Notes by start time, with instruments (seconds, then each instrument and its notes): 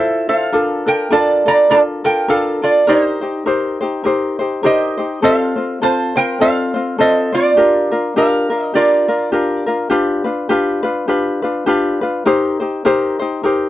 Already playing: ukulele E4 F4 A4 C5, resonator guitar played with a steel bar A4 E5
0.29 ukulele E4 F4 C5, resonator guitar played with a steel bar A4 F5
0.52 ukulele D4 F4 A4 A#4
0.86 ukulele D4 F4 A4, resonator guitar played with a steel bar A#4 G5
1.10 ukulele D4 F4 A4 A#4, resonator guitar played with a steel bar D5 A5
1.46 ukulele D4 F4 A4, resonator guitar played with a steel bar D5 A#5
1.69 ukulele D4 F4 A4 A#4, resonator guitar played with a steel bar D5 A5
2.04 ukulele D4 F4 A4, resonator guitar played with a steel bar A#4 G5
2.28 ukulele D4 F4 A4 A#4, resonator guitar played with a steel bar A4 F5
2.62 ukulele D4 F4 A4, resonator guitar played with a steel bar F4 D5
2.87 ukulele D#4 G4 A#4 C5, resonator guitar played with a steel bar D#4 C5
3.21 ukulele D#4 G4 C5
3.46 ukulele D#4 G4 A#4 C5
3.81 ukulele D#4 G4 C5
4.04 ukulele D#4 G4 A#4 C5
4.39 ukulele D#4 G4 C5
4.63 ukulele D#4 G4 A#4 C5, resonator guitar played with a steel bar G4 D#5
4.97 ukulele D#4 G4 C5
5.22 ukulele C4 F4 A4 C5, resonator guitar played with a steel bar A4 F5
5.56 ukulele C4 F4 C5
5.82 ukulele C4 F4 A4 C5, resonator guitar played with a steel bar C5 A5
6.16 ukulele C4 F4 C5, resonator guitar played with a steel bar A#4 G5
6.40 ukulele C4 F4 A4 C5, resonator guitar played with a steel bar A4 F5
6.74 ukulele C4 F4 C5
6.98 ukulele C4 F4 A4 C5, resonator guitar played with a steel bar A4 D#5
7.32 ukulele C4 F4 C5, resonator guitar played with a steel bar F4 D5
7.57 ukulele D4 F4 G4 A#4
7.91 ukulele D4 F4 A#4
8.16 ukulele D4 F4 G4 A#4, resonator guitar played with a steel bar A#4 F5
8.50 ukulele D4 F4 A#4
8.64 resonator guitar played with a steel bar D#5
8.74 ukulele D4 F4 G4 A#4, resonator guitar played with a steel bar F4 D5
9.08 ukulele D4 F4 A#4
9.32 ukulele D4 F4 G4 A#4
9.66 ukulele D4 F4 A#4
9.90 ukulele D4 F4 G4 B4
10.24 ukulele D4 F4 B4
10.49 ukulele D4 F4 G4 B4
10.83 ukulele D4 F4 B4
11.08 ukulele D4 F4 G4 B4
11.42 ukulele D4 F4 B4
11.66 ukulele D4 F4 G4 B4
12.01 ukulele D4 F4 B4
12.25 ukulele D#4 G4 A#4 C5
12.60 ukulele D#4 G4 C5
12.85 ukulele D#4 G4 A#4 C5
13.19 ukulele D#4 G4 C5
13.43 ukulele D#4 G4 A#4 C5